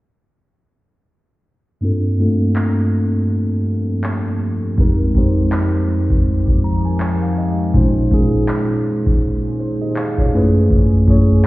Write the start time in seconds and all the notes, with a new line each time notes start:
1.81 G2 F3 A#3 C4 D4 F4 G4 A4
2.18 G2 A3 C4 D4 F4 A4
2.25 A#3
2.56 clap
4.04 clap
4.77 F2 G#3 C4 D#4 G4 A#4, kick
5.14 F2 G#3 C4 D#4 G4 C5, kick
5.52 clap
6.10 kick
6.48 kick
6.64 A#5
6.85 G#5
7.00 G5, clap
7.22 F5
7.38 D#5
7.73 A#2 D#3 G#3 A#3 C#4 D#4 F4 G#4 C5, kick
8.10 A#2 G#3 C#4 D#4 F4 G#4, kick
8.48 clap
9.07 kick
9.60 D#4 C5
9.82 G4 D#5
9.96 G#4 F5, clap
10.18 F4 C#5, kick
10.32 F#2 F#3 A3 C#4 E4 G#4 B4
10.71 kick
11.07 F#2 A3 C#4 E4 G#4 C#5, kick